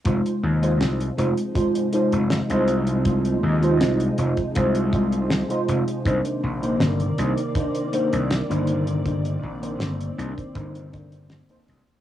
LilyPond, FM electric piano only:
\new Staff \with { instrumentName = "FM electric piano" } { \time 4/4 \key f \dorian \tempo 4 = 80 <aes ees' f' c''>8. <aes ees' f' c''>8. <aes ees' f' c''>16 r16 <aes ees' f' c''>8 <aes ees' f' c''>8. <aes ees' f' c''>8. | <aes ees' f' c''>8. <aes ees' f' c''>8. <aes ees' f' c''>16 r16 <aes ees' f' c''>8 <aes ees' f' c''>8. <aes ees' f' c''>8. | <bes d' ees' c''>8. <bes d' ees' c''>8. <bes d' ees' c''>16 r16 <bes d' ees' c''>8 <bes d' ees' c''>8. <bes d' ees' c''>8. | <bes d' ees' c''>8. <bes d' ees' c''>8. <bes d' ees' c''>16 r16 <bes d' ees' c''>8 <bes d' ees' c''>8. <bes d' ees' c''>8. | }